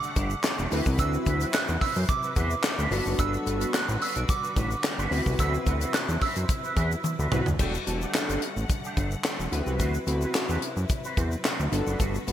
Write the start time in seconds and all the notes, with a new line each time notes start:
Already playing: D3 G3 A3 F#5 D6
0.03 A3 D4 G4, shaker
0.16 G1 A3 D4 G4, kick, closed hi-hat, shaker
0.30 muted clean electric guitar stroke, shaker
0.43 snare, clap, closed hi-hat, shaker
0.58 E1 A3 D4 G4, shaker
0.71 D2 C3 F#3 C4 E4 F#4 B4, open hi-hat, shaker
0.86 C2, muted clean electric guitar stroke, kick, shaker
0.98 D2 C4 F#4 B4 E6, kick, closed hi-hat, shaker
1.13 muted clean electric guitar stroke, shaker
1.26 D2 C4 F#4 B4, kick, closed hi-hat, shaker
1.41 C4 F#4 B4, closed hi-hat, shaker
1.53 F#6, muted clean electric guitar stroke, snare, clap, closed hi-hat, shaker
1.68 E2, muted clean electric guitar stroke, shaker
1.81 C4 F#4 B4 E6, kick, open hi-hat
1.95 F#2 C4 F#4 C5, shaker
2.08 D6, muted clean electric guitar stroke, kick, closed hi-hat, shaker
2.23 C4 F#4 B4, shaker
2.36 E2 C4 F#4 B4, kick, closed hi-hat, shaker
2.50 muted clean electric guitar stroke, shaker
2.64 muted clean electric guitar stroke, snare, clap, closed hi-hat, shaker
2.78 D2 C4 F#4 B4, shaker
2.90 G1 D3 G3 B3 D4 F#4 A4 B4, open hi-hat, shaker
3.05 F#1, muted clean electric guitar stroke, shaker
3.18 G1 D4 F#4 B4 E6, kick, closed hi-hat, shaker
3.33 muted clean electric guitar stroke, shaker
3.46 G1 D4 F#4 B4, closed hi-hat, shaker
3.60 D4 F#4 B4, closed hi-hat, shaker
3.74 F#6, snare, clap, closed hi-hat, shaker
3.88 A1, muted clean electric guitar stroke, shaker
4.01 D4 F#4 B4 E6, open hi-hat
4.15 B1 D4 F#4 D5, closed hi-hat, shaker
4.29 D6, muted clean electric guitar stroke, kick, closed hi-hat, shaker
4.43 D4 F#4 B4, shaker
4.56 A1 D4 F#4 B4, kick, closed hi-hat, shaker
4.71 muted clean electric guitar stroke, shaker
4.84 muted clean electric guitar stroke, snare, clap, closed hi-hat, shaker
4.98 G1 D4 F#4 B4, shaker
5.11 D2 C3 F#3 C4 E4 F#4 B4, open hi-hat, shaker
5.26 C2, muted clean electric guitar stroke, kick, shaker
5.39 D2 C4 F#4 B4 E6, kick, closed hi-hat, shaker
5.54 muted clean electric guitar stroke, shaker
5.66 D2 C4 F#4 B4, kick, closed hi-hat, shaker
5.81 C4 F#4 B4, closed hi-hat, shaker
5.94 F#6, snare, clap, closed hi-hat, shaker
6.09 E2, muted clean electric guitar stroke, shaker
6.21 C4 F#4 B4 E6, kick, open hi-hat
6.36 F#2 C4 F#4 C5, closed hi-hat, shaker
6.49 muted clean electric guitar stroke, kick, closed hi-hat, shaker
6.64 C4 F#4 B4, shaker
6.76 E2 C4 F#4 B4, kick, closed hi-hat, shaker
6.91 muted clean electric guitar stroke, shaker
7.04 muted clean electric guitar stroke, high tom, shaker
7.19 D2 C4 F#4 B4, shaker
7.31 C2 C4 E4 F#4 B4, mid tom, shaker
7.46 D2, muted clean electric guitar stroke, floor tom, shaker
7.59 E1 D3 G3 A3 D4 F#4 G4 A4 F#5, kick, crash, shaker
7.74 muted clean electric guitar stroke, shaker
7.87 E1 D4 F#4 G4 A4, muted clean electric guitar stroke, closed hi-hat, shaker
8.01 A3 D4 G4, shaker
8.15 snare, clap, closed hi-hat, shaker
8.29 G1 A3 D4 G4, closed hi-hat, shaker
8.42 muted clean electric guitar stroke, closed hi-hat
8.56 A1, muted clean electric guitar stroke, shaker
8.70 muted clean electric guitar stroke, kick, closed hi-hat, shaker
8.84 A3 D4 G4, shaker
8.97 G1 A3 D4 A4, kick, closed hi-hat, shaker
9.11 muted clean electric guitar stroke, shaker
9.24 A3 D4 G4, snare, clap, closed hi-hat, shaker
9.39 E1, muted clean electric guitar stroke, shaker
9.52 D2 C3 F#3 C4 E4 F#4 B4, muted clean electric guitar stroke, closed hi-hat, shaker
9.66 C2 C4 F#4 B4, shaker
9.79 D2 C4 F#4 B4, kick, closed hi-hat, shaker
9.94 muted clean electric guitar stroke, shaker
10.07 D2 C4 E4 F#4 B4, muted clean electric guitar stroke, closed hi-hat, shaker
10.21 C4 F#4 B4, shaker
10.34 snare, clap, closed hi-hat, shaker
10.49 E2 C4 F#4 B4, shaker
10.62 muted clean electric guitar stroke, closed hi-hat
10.77 F#2, muted clean electric guitar stroke, shaker
10.89 muted clean electric guitar stroke, kick, closed hi-hat, shaker
11.04 C4 F#4 B4, shaker
11.17 E2 C4 F#4 C5, kick, closed hi-hat, shaker
11.32 muted clean electric guitar stroke, shaker
11.44 C4 F#4 B4, snare, clap, closed hi-hat, shaker
11.59 D2, muted clean electric guitar stroke, shaker
11.72 G1 D3 G3 B3 D4 F#4 A4, muted clean electric guitar stroke, closed hi-hat, shaker
11.87 F#1 D4 F#4 B4, shaker
12.00 G1 D4 F#4 B4, kick, closed hi-hat, shaker
12.14 muted clean electric guitar stroke, shaker
12.27 G1 B3 D4 F#4 B4, muted clean electric guitar stroke, closed hi-hat, shaker